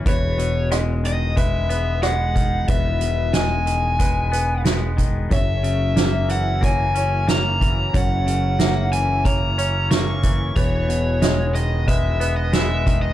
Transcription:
<<
  \new Staff \with { instrumentName = "Overdriven electric guitar" } { \time 4/4 \key e \lydian \tempo 4 = 91 cis''4 r8 dis''8 e''4 fis''4 | e''4 gis''2 r4 | e''4. fis''8 gis''4 ais''4 | fis''4. gis''8 ais''4 cis'''4 |
cis''4. dis''8 e''8. dis''16 e''8. dis''16 | }
  \new Staff \with { instrumentName = "Felt piano" } { \time 4/4 \key e \lydian b'4 dis''4 b'8 b'4 r8 | b'4 dis''4 b'8 b'4 r8 | cis''4 e''4 cis''8 cis''4 r8 | cis''4 e''4 cis''8 cis''4 r8 |
b'4 dis''4 b'8 b'4 r8 | }
  \new Staff \with { instrumentName = "Harmonium" } { \time 4/4 \key e \lydian r1 | r1 | <fis cis' ais' e''>1~ | <fis cis' ais' e''>1 |
<b gis'>1 | }
  \new Staff \with { instrumentName = "Clean electric guitar" } { \clef bass \time 4/4 \key e \lydian e,8 b,8 gis8 dis8 gis8 b8 gis8 dis8 | e,8 b,8 gis8 dis8 gis8 b8 gis8 dis8 | fis,8 cis8 ais8 e8 ais8 cis'8 ais8 e8 | fis,8 cis8 ais8 e8 ais8 cis'8 ais8 e8 |
e,8 b,8 gis8 dis8 gis8 b8 gis8 dis8 | }
  \new Staff \with { instrumentName = "Fingered electric bass" } { \clef bass \time 4/4 \key e \lydian e,,1 | e,,1 | fis,,1 | fis,,1 |
e,,1 | }
  \new DrumStaff \with { instrumentName = "Drums" } \drummode { \time 4/4 <hh bd>8 hh8 <hh ss>8 hh8 <hh bd>8 hh8 <hh ss>8 <hh bd>8 | <hh bd>8 hh8 <hh sn>8 hh8 <hh bd>8 hh8 <hh sn>8 <hh bd>8 | <hh bd>8 hh8 <hh sn>8 hh8 <hh bd>8 hh8 <hh sn>8 <hh bd>8 | <hh bd>8 hh8 <hh sn>8 hh8 <hh bd>8 hh8 <hh sn>8 <hh bd>8 |
<hh bd>8 hh8 <hh sn>8 hh8 <hh bd>8 hh8 <hh sn>8 <hh bd>8 | }
>>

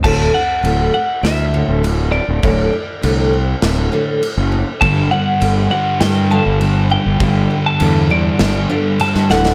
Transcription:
<<
  \new Staff \with { instrumentName = "Clean electric guitar" } { \time 4/4 \key d \major \tempo 4 = 100 a''8 fis''4 fis''8 e''4 r8 d''8~ | d''2.~ d''8 r8 | a''8 fis''4 fis''8 g''8 a''4 g''8~ | g''8. a''8. d''4. a''8 fis''8 | }
  \new Staff \with { instrumentName = "Distorted electric guitar" } { \clef bass \time 4/4 \key d \major r1 | r1 | <g, d g>4. <g, d g>4. <g, d g>4 | <g, d g>4. <g, d g>4. <g, d g>8 r8 | }
  \new Staff \with { instrumentName = "Steel-string acoustic guitar" } { \clef bass \time 4/4 \key d \major <d, a, d>8 d,8 <d, a, d>8 <d, a,>8 <d, a,>8 <d, a, d>8 <d, a,>8 <d, a,>8 | <d, a, d>8 d,8 <d, a, d>8 <d, a,>8 <d, a,>8 <d, a, d>8 <d, a,>8 <d, a,>8 | <g, d g>8 <g, d>8 <g, d g>8 <g, d>8 <g, d>8 <g, d g>8 <g, d>8 <g, d>8 | <g, d g>8 <g, d>8 <g, d g>8 <g, d>8 <g, d>8 <g, d g>8 <g, d>8 <d, a, d>8 | }
  \new Staff \with { instrumentName = "Fingered electric bass" } { \clef bass \time 4/4 \key d \major d,,8 r8 d,,8 r8 d,8. d,,4 d,,16 | d,,8 r8 c,4 d,,8 r8. fis,,8 r16 | g,,8 r8 g,,8 r8 g,8. g,,4 g,,16 | g,,8 r8 e,4 g,,8 r8. g,16 d,,8 | }
  \new DrumStaff \with { instrumentName = "Drums" } \drummode { \time 4/4 <cymc bd>4 cymc4 <cymc sn>4 cymc4 | <cymc bd>4 cymc4 <cymc sn>4 cymc4 | <cymc bd>4 cymc4 <cymc sn>4 cymc4 | <cymc bd>4 cymc4 <cymc sn>4 cymc16 sn16 sn16 sn16 | }
>>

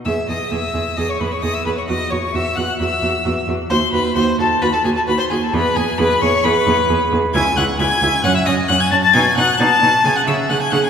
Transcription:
<<
  \new Staff \with { instrumentName = "Violin" } { \time 4/4 \key e \major \tempo 4 = 132 e'''8 dis'''8 e'''4 dis'''16 cis'''16 b''16 cis'''16 dis'''16 e'''16 b''16 cis'''16 | dis'''8 cis'''8 e'''8 fis'''8 e'''4. r8 | c'''8 b''8 c'''8 a''8 b''16 a''16 gis''16 a''16 b''16 c'''16 gis''16 a''16 | b''8 gis''8 b''8 cis'''8 b''4. r8 |
gis'''8 fis'''8 gis'''4 fis'''16 e'''16 dis'''8 fis'''16 gis'''16 a'''16 a'''16 | gis'''8 fis'''8 a'''4 gis'''16 fis'''16 e'''8 fis'''16 gis'''16 fis'''16 gis'''16 | }
  \new Staff \with { instrumentName = "Violin" } { \time 4/4 \key e \major e''8 dis''8 e''4 dis''16 cis''16 b'16 cis''16 dis''16 e''16 b'16 cis''16 | dis''8 cis''8 e''8 fis''8 e''4. r8 | c''8 b'8 c''8 a'8 b'16 a'16 gis'16 a'16 b'16 c''16 gis'16 a'16 | b'8 gis'8 b'8 cis''8 b'4. r8 |
gis''8 fis''8 gis''4 fis''16 e''16 dis''8 fis''16 gis''16 a''16 a''16 | gis''8 fis''8 a''4 gis''16 fis''16 e''8 fis''16 gis''16 fis''16 gis''16 | }
  \new Staff \with { instrumentName = "Viola" } { \time 4/4 \key e \major gis'8 gis'8 gis'8 gis'8 gis'8 gis'8 gis'8 gis'8 | fis'8 fis'8 fis'8 fis'8 fis'8 fis'8 fis'8 fis'8 | fis'8 fis'8 fis'8 fis'8 fis'8 fis'8 fis'8 fis'8 | gis'8 gis'8 gis'8 gis'8 gis'8 gis'8 gis'8 gis'8 |
e'8 e'8 e'8 e'8 cis'8 cis'8 cis'8 cis'8 | dis'8 dis'8 dis'8 dis'8 gis'8 gis'8 gis'8 gis'8 | }
  \new Staff \with { instrumentName = "Cello" } { \clef bass \time 4/4 \key e \major e,8 e,8 e,8 e,8 e,8 e,8 e,8 e,8 | e,8 e,8 e,8 e,8 e,8 e,8 e,8 e,8 | dis,8 dis,8 dis,8 dis,8 dis,8 dis,8 dis,8 dis,8 | e,8 e,8 e,8 e,8 e,8 e,8 e,8 e,8 |
cis,8 cis,8 cis,8 cis,8 fis,8 fis,8 fis,8 fis,8 | b,8 b,8 b,8 b,8 cis8 cis8 cis8 cis8 | }
>>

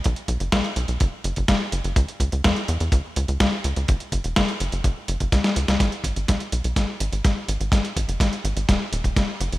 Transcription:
<<
  \new Staff \with { instrumentName = "Analog synth bass" } { \clef bass \time 4/4 \key fis \mixolydian \tempo 4 = 125 b,,16 r16 b,,16 fis,,16 b,,16 r16 b,,16 b,,16 fis,,16 r16 fis,,16 fis,,16 fis,,16 r16 fis,,16 fis,,16 | cis,16 r16 cis,16 cis,16 e,16 r16 e,16 e,16 cis,16 r16 cis,16 cis,16 cis,16 r16 cis,16 cis,16 | fis,,16 r16 fis,,16 e,,16 fis,,16 r16 fis,,16 fis,,16 fis,,16 r16 fis,,16 fis,,16 cis,16 r16 cis,16 cis,16 | gis,,16 r16 gis,,16 gis,,16 b,,16 r16 b,,16 b,,16 gis,,16 r16 gis,,16 gis,,16 gis,,16 r16 gis,,16 gis,,16 |
gis,,16 r16 gis,,16 fis,,16 gis,,16 r16 gis,,16 gis,,16 dis,,16 r16 dis,,16 dis,,16 fis,,16 r16 fis,,16 fis,,16 | }
  \new DrumStaff \with { instrumentName = "Drums" } \drummode { \time 4/4 <hh bd>16 hh16 <hh bd>16 hh16 <hh bd sn>16 hh16 hh16 hh16 <hh bd>8 hh16 <hh bd>16 <hh bd sn>8 hh16 hh16 | <hh bd>16 hh16 <hh bd>16 hh16 <hh bd sn>16 hh16 hh16 hh16 <hh bd>8 hh16 hh16 <hh bd sn>8 hh16 hh16 | <hh bd>16 hh16 <hh bd>16 hh16 <hh bd sn>16 hh16 hh16 hh16 <hh bd>8 hh16 <hh bd>16 <hh bd sn>16 <hh sn>16 hh16 <hh sn>16 | <hh bd sn>16 hh16 <hh bd>16 hh16 <hh bd sn>16 hh16 hh16 hh16 <hh bd sn>8 hh16 hh16 <hh bd sn>8 hh16 hh16 |
<hh bd sn>16 hh16 <hh bd>16 hh16 <hh bd sn>16 hh16 hh16 hh16 <hh bd sn>8 hh16 <hh bd>16 <hh bd sn>8 hh16 hh16 | }
>>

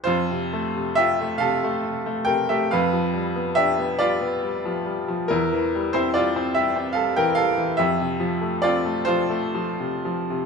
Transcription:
<<
  \new Staff \with { instrumentName = "Upright piano" } { \time 12/8 \key f \major \tempo 4. = 46 <f' c''>4 <g' e''>8 <a' f''>4 <bes' g''>16 <g' e''>16 <b' f''>4 <g' e''>8 <f' d''>4. | <e' bes'>8. <e' c''>16 <f' d''>8 <g' e''>8 <a' f''>16 <bes' g''>16 <a' f''>8 <g' e''>4 <f' d''>8 <f' c''>4. | }
  \new Staff \with { instrumentName = "Upright piano" } { \clef bass \time 12/8 \key f \major f,16 c16 a16 c16 f'16 a16 c16 a16 c16 a16 c16 a16 f,16 f16 g16 b16 d'16 b16 g16 b16 g16 f16 g16 f16 | e,16 e16 g16 c'16 g16 c'16 g16 c'16 g16 e16 g16 e16 f,16 c16 f16 a16 c'16 a16 f16 a16 f16 c16 f16 c16 | }
>>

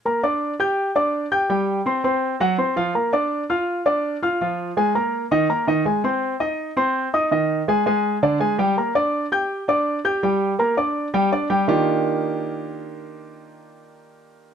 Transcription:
\new Staff \with { instrumentName = "Grand piano" } { \time 4/4 \key ees \major \tempo 4 = 165 <bes bes' bes''>8 <d' d'' d'''>4 <g' g'' g'''>4 <d' d'' d'''>4 <g' g'' g'''>8 | <g g' g''>4 <c' c'' c'''>8 <c' c'' c'''>4 <ges ges' ges''>8 <c' c'' c'''>8 <f f' f''>8 | <bes bes' bes''>8 <d' d'' d'''>4 <f' f'' f'''>4 <d' d'' d'''>4 <f' f'' f'''>8 | <f f' f''>4 <aes aes' aes''>8 <bes bes' bes''>4 <ees ees' ees''>8 <bes bes' bes''>8 <ees ees' ees''>8 |
<aes aes' aes''>8 <c' c'' c'''>4 <ees' ees'' ees'''>4 <c' c'' c'''>4 <ees' ees'' ees'''>8 | <ees ees' ees''>4 <aes aes' aes''>8 <aes aes' aes''>4 <d d' d''>8 <aes aes' aes''>8 <g g' g''>8 | <bes bes' bes''>8 <d' d'' d'''>4 <g' g'' g'''>4 <d' d'' d'''>4 <g' g'' g'''>8 | <g g' g''>4 <bes bes' bes''>8 <d' d'' d'''>4 <g g' g''>8 <d' d'' d'''>8 <g g' g''>8 |
<ees bes d' ees' f' g'>1~ | <ees bes d' ees' f' g'>1 | }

